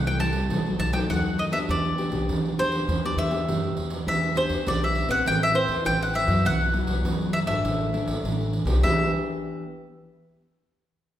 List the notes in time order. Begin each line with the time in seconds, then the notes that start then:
Already playing: C2 C3
0.07 G3 A3 E4 G5, pandeiro
0.19 G3 A3 E4 A5, pandeiro
0.33 pandeiro
0.50 B1 B2 F#3 A3 D#4, pandeiro
0.66 F#3 A3 D#4, pandeiro
0.79 B1 A5, pandeiro
0.93 F#3 A3 D#4 G5, pandeiro
1.10 D#2 F#2 F#3 A3 D#4 F#5, pandeiro
1.26 pandeiro
1.38 D#5, pandeiro
1.51 B3 D4 G4 E5, pandeiro
1.68 E2 E3 D5, pandeiro
1.85 pandeiro
1.98 B3 D4 G4, pandeiro
2.11 B1 B3 D4 G4, pandeiro
2.28 E2 B2, pandeiro
2.46 pandeiro
2.58 B3 D4 G4 C5, pandeiro
2.72 pandeiro
2.88 E2 E3, pandeiro
3.04 B3 D4 G4 D5, pandeiro
3.16 E2 E5, pandeiro
3.31 B3 D4 G4, pandeiro
3.48 F#2 B2 B3 D4 G4, pandeiro
3.64 pandeiro
3.76 E2, pandeiro
3.90 pandeiro
4.07 E2 E3 B3 D4 G4 E5, pandeiro
4.24 pandeiro
4.35 B3 D4 G4 C5, pandeiro
4.49 E2, pandeiro
4.67 B1 B2 B3 D4 G4 D5, pandeiro
4.82 E5, pandeiro
4.95 pandeiro
5.08 A#1 C4 E4 B4 F#5, pandeiro
5.25 A1 A3 G5, pandeiro
5.42 E5, pandeiro
5.54 C4 E4 B4 C5, pandeiro
5.68 E2, pandeiro
5.85 A1 E3 C4 E4 B4 G5, pandeiro
6.01 F#5, pandeiro
6.14 E5, pandeiro
6.27 F#2 F#3 B3 E4, pandeiro
6.44 B1 B2 F#5, pandeiro
6.61 pandeiro
6.73 F#3 B3 E4, pandeiro
6.87 B1, pandeiro
7.04 F#2 F#3 B3 E4, pandeiro
7.21 pandeiro
7.33 E5, pandeiro
7.46 G#1 E3 A3 D4 E5, pandeiro
7.64 A1 A2, pandeiro
7.81 pandeiro
7.93 E3 A3 D4, pandeiro
8.06 A1, pandeiro
8.23 A1 A2 E3 A3 D4, pandeiro
8.41 pandeiro
8.53 pandeiro
8.65 B1 B3 D4 G4, pandeiro
8.82 E2 E3 B3 D4 G4 E5, pandeiro